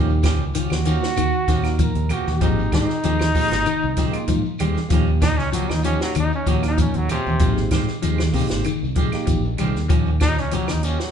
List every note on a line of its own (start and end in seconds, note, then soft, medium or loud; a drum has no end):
0.00 0.40 D#2 loud
0.00 0.12 F3 medium
0.00 0.15 F3 loud
0.00 0.12 A#3 medium
0.00 0.25 A#3 medium
0.00 0.12 C#4 medium
0.00 0.25 D#4 medium
0.00 0.12 G4 medium
0.00 0.26 G4 loud
0.09 shekere soft
0.23 0.46 D#3 medium
0.23 0.43 F3 medium
0.23 0.43 A#3 medium
0.23 0.44 C#4 medium
0.23 0.44 G4 medium
0.23 kick medium
0.23 snare medium
0.23 closed hi-hat medium
0.23 high conga medium
0.23 claves medium
0.23 shekere medium
0.40 0.66 C#2 loud
0.40 shekere soft
0.54 0.78 D#3 medium
0.54 0.74 F3 medium
0.54 0.74 C#4 medium
0.54 1.77 F#4 loud
0.54 0.74 G4 medium
0.54 muted clean electric guitar stroke medium
0.54 closed hi-hat medium
0.54 shekere medium
0.70 0.98 D#2 medium
0.70 snare medium
0.70 high conga medium
0.70 claves medium
0.70 shekere soft
0.84 1.09 D#3 medium
0.84 1.05 F3 medium
0.84 1.13 A#3 medium
0.84 1.05 A#3 medium
0.84 1.05 C#4 medium
0.84 1.13 D#4 medium
0.84 1.05 G4 medium
0.84 1.14 A#4 medium
0.84 closed hi-hat medium
0.84 high conga medium
0.84 shekere medium
1.01 snare medium
1.01 shekere soft
1.16 1.31 D#2 loud
1.16 1.40 D#3 loud
1.16 closed hi-hat medium
1.16 claves medium
1.16 shekere medium
1.33 shekere soft
1.48 1.88 D#2 medium
1.48 1.71 D#3 medium
1.48 1.67 F3 medium
1.48 1.67 A#3 medium
1.48 1.67 C#4 medium
1.48 1.67 G4 medium
1.48 kick medium
1.48 snare soft
1.48 closed hi-hat medium
1.48 shekere medium
1.63 1.91 A#3 medium
1.63 1.91 D#4 medium
1.63 1.92 A#4 loud
1.63 snare soft
1.63 closed hi-hat soft
1.63 claves medium
1.63 shekere soft
1.79 2.02 F3 medium
1.79 2.11 A#4 medium
1.79 kick medium
1.79 closed hi-hat medium
1.79 high conga medium
1.79 shekere medium
1.95 2.08 D#2 loud
1.95 closed hi-hat soft
1.95 shekere soft
2.09 2.29 F3 medium
2.09 2.29 A#3 medium
2.09 2.42 F#4 medium
2.09 2.30 G4 medium
2.09 muted clean electric guitar stroke medium
2.09 closed hi-hat medium
2.09 high conga loud
2.09 low conga medium
2.09 claves medium
2.09 shekere medium
2.27 2.40 D#2 medium
2.27 snare soft
2.27 high conga medium
2.27 low conga medium
2.27 shekere soft
2.40 2.68 G#1 loud
2.40 2.60 D#3 medium
2.40 2.64 F3 loud
2.40 2.61 G#3 medium
2.40 2.74 A#3 medium
2.40 2.61 C4 medium
2.40 2.74 D#4 medium
2.40 2.72 D#4 loud
2.40 2.75 G4 medium
2.40 2.61 G4 medium
2.40 kick loud
2.40 closed hi-hat medium
2.40 high conga soft
2.40 low conga medium
2.40 shekere medium
2.59 shekere soft
2.72 2.87 G#2 loud
2.72 2.91 D#3 medium
2.72 2.96 D#3 medium
2.72 2.92 G#3 medium
2.72 2.92 C4 medium
2.72 4.56 D#4 loud
2.72 2.92 G4 medium
2.72 kick medium
2.72 snare medium
2.72 closed hi-hat soft
2.72 high conga medium
2.72 claves medium
2.72 shekere medium
2.89 snare soft
2.89 shekere soft
3.03 3.31 D#2 loud
3.03 3.27 F3 medium
3.03 3.23 G#3 medium
3.03 3.23 C4 medium
3.03 3.23 G4 medium
3.03 closed hi-hat medium
3.03 shekere medium
3.19 snare medium
3.19 high conga medium
3.19 claves medium
3.34 3.54 D#3 medium
3.34 3.58 F3 medium
3.34 3.54 G#3 medium
3.34 3.62 A#3 medium
3.34 3.54 C4 medium
3.34 3.62 D#4 medium
3.34 3.63 G4 medium
3.34 muted clean electric guitar stroke medium
3.34 kick medium
3.34 open hi-hat medium
3.34 shekere medium
3.51 3.64 G#1 medium
3.51 snare medium
3.51 closed hi-hat soft
3.66 3.89 D#3 loud
3.66 closed hi-hat medium
3.66 high conga soft
3.66 claves medium
3.66 shekere medium
3.82 4.10 C2 medium
3.82 shekere soft
3.97 4.20 F3 medium
3.97 4.17 G#3 medium
3.97 4.17 C4 medium
3.97 4.17 G4 medium
3.97 muted clean electric guitar stroke medium
3.97 kick medium
3.97 snare soft
3.97 closed hi-hat medium
3.97 shekere medium
4.12 4.40 A#3 loud
4.12 4.41 D#4 loud
4.12 4.41 F4 loud
4.12 muted fingered electric bass stroke soft
4.12 closed hi-hat soft
4.12 claves medium
4.12 shekere soft
4.28 4.42 G#2 loud
4.28 4.51 F3 medium
4.28 kick medium
4.28 closed hi-hat medium
4.28 high conga medium
4.28 shekere loud
4.45 muted fingered electric bass stroke soft
4.45 shekere soft
4.59 4.74 D#2 medium
4.59 4.79 D#3 medium
4.59 4.83 G3 medium
4.59 4.79 G#3 medium
4.59 4.79 C4 medium
4.59 4.79 G4 medium
4.59 closed hi-hat medium
4.59 high conga loud
4.59 low conga medium
4.59 claves medium
4.59 shekere medium
4.75 snare soft
4.75 high conga medium
4.75 shekere soft
4.89 5.39 D#2 loud
4.89 5.13 F3 loud
4.89 5.10 F3 medium
4.89 5.23 A#3 medium
4.89 5.11 A#3 medium
4.89 5.11 C#4 medium
4.89 5.24 D#4 medium
4.89 5.24 G4 medium
4.89 5.11 G4 medium
4.89 kick loud
4.89 closed hi-hat medium
4.89 high conga soft
4.89 low conga medium
4.89 shekere loud
5.06 shekere soft
5.21 5.45 D#3 medium
5.21 5.42 A#3 medium
5.21 5.42 C#4 medium
5.21 5.39 D#4 loud
5.21 5.42 G4 medium
5.21 muted clean electric guitar stroke medium
5.21 kick medium
5.21 snare medium
5.21 closed hi-hat medium
5.21 high conga loud
5.21 claves medium
5.21 shekere medium
5.38 5.65 C#2 medium
5.38 5.52 C#4 loud
5.38 snare soft
5.38 shekere soft
5.52 5.76 F3 medium
5.52 5.73 F3 medium
5.52 5.72 F#3 medium
5.52 5.73 A#3 medium
5.52 5.73 C#4 medium
5.52 5.73 G4 medium
5.52 closed hi-hat medium
5.52 high conga soft
5.52 shekere loud
5.69 5.96 D#2 medium
5.69 5.84 D#4 medium
5.69 snare medium
5.69 high conga medium
5.69 claves medium
5.69 shekere soft
5.83 6.07 F3 medium
5.83 6.01 F3 medium
5.83 6.11 A#3 medium
5.83 6.01 A#3 medium
5.83 6.00 C#4 loud
5.83 6.00 C#4 medium
5.83 6.12 D#4 medium
5.83 6.12 G4 medium
5.83 5.99 G4 medium
5.83 closed hi-hat medium
5.83 high conga medium
5.83 shekere medium
6.01 6.15 F#3 loud
6.01 6.19 A#3 soft
6.01 6.19 C#4 soft
6.01 muted clean electric guitar stroke soft
6.01 snare medium
6.01 shekere soft
6.15 6.30 D#2 loud
6.15 6.39 D#3 medium
6.15 closed hi-hat medium
6.15 claves medium
6.15 shekere medium
6.19 6.33 D#4 loud
6.32 6.47 C#4 loud
6.32 shekere soft
6.46 6.87 D#2 medium
6.46 6.70 F3 medium
6.46 6.66 A#3 medium
6.46 6.66 C#4 medium
6.46 6.67 G4 medium
6.46 kick medium
6.46 closed hi-hat medium
6.46 shekere medium
6.50 6.64 F#3 medium
6.61 6.89 A#3 medium
6.61 6.90 D#4 medium
6.61 6.90 A#4 loud
6.61 snare soft
6.61 closed hi-hat soft
6.61 claves medium
6.61 shekere soft
6.67 6.79 D#4 loud
6.78 7.00 F3 loud
6.78 6.98 C#4 medium
6.78 kick medium
6.78 closed hi-hat medium
6.78 high conga medium
6.78 shekere loud
6.94 7.08 D#2 loud
6.94 7.09 F#3 loud
6.94 closed hi-hat soft
6.94 shekere soft
7.09 7.71 C3 loud
7.09 7.29 F3 medium
7.09 7.29 A#3 medium
7.09 7.30 C#4 medium
7.09 7.30 G4 medium
7.09 muted clean electric guitar stroke medium
7.09 closed hi-hat medium
7.09 high conga loud
7.09 low conga medium
7.09 claves medium
7.09 shekere medium
7.27 7.39 D#2 medium
7.27 high conga medium
7.27 low conga medium
7.27 shekere soft
7.39 7.67 G#1 loud
7.39 7.60 D#3 medium
7.39 7.63 F3 loud
7.39 7.60 G#3 medium
7.39 7.73 A#3 medium
7.39 7.60 C4 medium
7.39 7.74 D#4 medium
7.39 7.74 G4 medium
7.39 muted clean electric guitar stroke medium
7.39 kick loud
7.39 closed hi-hat medium
7.39 high conga soft
7.39 low conga medium
7.39 shekere medium
7.57 snare soft
7.57 shekere soft
7.71 7.85 G#2 loud
7.71 7.91 D#3 medium
7.71 7.95 D#3 medium
7.71 7.91 G#3 medium
7.71 7.91 C4 medium
7.71 7.91 G4 medium
7.71 kick medium
7.71 snare medium
7.71 closed hi-hat medium
7.71 high conga loud
7.71 claves medium
7.71 shekere medium
7.88 snare soft
7.88 shekere soft
8.02 8.30 D#2 loud
8.02 8.22 D#3 medium
8.02 8.25 F3 medium
8.02 8.22 G#3 medium
8.02 8.23 C4 medium
8.02 8.23 G4 medium
8.02 closed hi-hat medium
8.02 shekere loud
8.18 snare medium
8.18 high conga medium
8.18 claves medium
8.18 shekere soft
8.32 8.57 C3 medium
8.32 8.51 G#3 medium
8.32 8.61 A#3 loud
8.32 8.50 C4 medium
8.32 8.61 D#4 medium
8.32 8.62 G4 loud
8.32 8.49 G4 medium
8.32 muted clean electric guitar stroke medium
8.32 kick medium
8.32 open hi-hat medium
8.32 high conga medium
8.32 shekere medium
8.49 8.64 G#1 medium
8.49 8.69 G#3 medium
8.49 8.69 C4 medium
8.49 8.68 G4 medium
8.49 snare medium
8.49 closed hi-hat soft
8.49 shekere soft
8.64 8.88 D#3 medium
8.64 closed hi-hat medium
8.64 claves medium
8.64 shekere medium
8.83 9.09 C2 medium
8.83 shekere soft
8.95 9.16 D#3 medium
8.95 9.19 F3 medium
8.95 9.16 G#3 medium
8.95 9.16 G4 medium
8.95 kick medium
8.95 closed hi-hat soft
8.95 shekere medium
9.12 9.40 A#3 loud
9.12 9.41 D#4 loud
9.12 9.41 G4 loud
9.12 muted fingered electric bass stroke soft
9.12 snare soft
9.12 closed hi-hat soft
9.12 claves medium
9.12 shekere soft
9.27 9.42 G#1 medium
9.27 9.50 F3 medium
9.27 kick medium
9.27 closed hi-hat medium
9.27 high conga medium
9.27 shekere loud
9.44 9.58 A#1 medium
9.44 shekere soft
9.58 9.74 C2 medium
9.58 9.78 D#3 medium
9.58 9.82 G3 medium
9.58 9.78 G#3 medium
9.58 9.78 C4 medium
9.58 9.79 G4 medium
9.58 closed hi-hat medium
9.58 high conga medium
9.58 low conga medium
9.58 claves medium
9.58 shekere medium
9.75 9.89 D#2 medium
9.75 snare soft
9.75 shekere soft
9.89 10.38 D#2 loud
9.89 10.12 F3 loud
9.89 10.09 F3 medium
9.89 10.10 A#3 medium
9.89 10.10 C#4 medium
9.89 10.10 G4 medium
9.89 kick loud
9.89 closed hi-hat medium
9.89 high conga soft
9.89 low conga medium
9.89 shekere loud
10.05 shekere soft
10.20 10.44 D#3 medium
10.20 10.41 F3 medium
10.20 10.41 A#3 medium
10.20 10.41 C#4 medium
10.20 10.41 D#4 loud
10.20 10.41 G4 medium
10.20 kick medium
10.20 snare medium
10.20 closed hi-hat medium
10.20 high conga medium
10.20 claves medium
10.20 shekere medium
10.37 10.65 C#2 loud
10.37 10.56 C#4 loud
10.37 snare soft
10.37 shekere soft
10.51 10.75 F3 medium
10.51 10.72 F3 medium
10.51 10.72 F#3 loud
10.51 10.72 A#3 medium
10.51 10.72 C#4 medium
10.51 10.72 G4 medium
10.51 closed hi-hat medium
10.51 high conga soft
10.51 shekere loud
10.68 10.96 D#2 medium
10.68 10.87 D#4 medium
10.68 snare medium
10.68 high conga medium
10.68 claves medium
10.68 shekere soft
10.83 11.03 F3 medium
10.83 11.03 A#3 medium
10.83 11.02 C#4 medium
10.83 11.04 G4 medium
10.83 muted clean electric guitar stroke medium
10.83 closed hi-hat medium
10.83 shekere medium
11.00 11.11 F#3 medium
11.00 snare medium
11.00 shekere soft